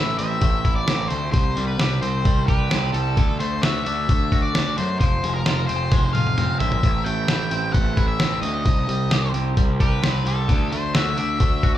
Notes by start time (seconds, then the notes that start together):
Already playing: A1 A2 A3 E4 E5
0.19 A1 C4 E5, open hi-hat
0.41 A1 A3, kick, open hi-hat
0.65 E4, kick, open hi-hat
0.75 D5
0.87 A1 C4, snare, open hi-hat
1.08 D2 A3 C5, open hi-hat
1.32 C2 C3 C5, kick, open hi-hat
1.57 C2 G3, open hi-hat
1.67 B4
1.78 C2 G4, snare, open hi-hat
2.02 C2 C4 C5, open hi-hat
2.25 C2 G3, kick, open hi-hat
2.47 G4 B4, kick, open hi-hat
2.71 C2 C4, snare, open hi-hat
2.92 C2 G3 A4, open hi-hat
3.17 D2 D3, kick, open hi-hat
3.39 D2 A3 C5, open hi-hat
3.62 D2 F#4 E5, snare, open hi-hat
3.85 D2 D4 E5, open hi-hat
4.09 D2 A3, kick, open hi-hat
4.32 F#4, kick, open hi-hat
4.42 D5
4.55 D2 D4, snare, open hi-hat
4.78 F#2 A3 C5, open hi-hat
5.00 F1 F3 C5, kick, open hi-hat
5.23 F1 G#3, open hi-hat
5.34 A#4
5.46 F1 F4, snare, open hi-hat
5.67 F1 C4 C5, open hi-hat
5.92 F1 G#3, kick, snare, open hi-hat
6.13 F4 F5, open hi-hat, high tom
6.27 high tom
6.38 F1 C4, open hi-hat, mid tom
6.59 A#1 G#3 E5, floor tom, open hi-hat
6.72 floor tom
6.83 A1 A2, kick, open hi-hat
7.04 A1 A3 G5, open hi-hat
7.28 A1 E4, snare, open hi-hat
7.51 A1 C4, open hi-hat
7.73 A1 A3 F#5, kick, open hi-hat
7.97 E4, kick, open hi-hat
8.08 E5
8.20 A1 C4, snare, open hi-hat
8.42 D2 A3 D#5, open hi-hat
8.66 C2 C3, kick, open hi-hat
8.88 C2 G3, open hi-hat
9.11 C2 G4, snare, open hi-hat
9.34 C2 C4, open hi-hat
9.57 C2 G3, kick, open hi-hat
9.80 G4 B4, kick, open hi-hat
10.03 C2 C4, snare, open hi-hat
10.26 C2 G3 A4, open hi-hat
10.48 D2 D3, kick, open hi-hat
10.71 D2 A3 C5, open hi-hat
10.95 D2 F#4 E5, snare, open hi-hat
11.18 D2 D4 E5, open hi-hat
11.40 D2 A3, kick, open hi-hat
11.63 F#4, kick, open hi-hat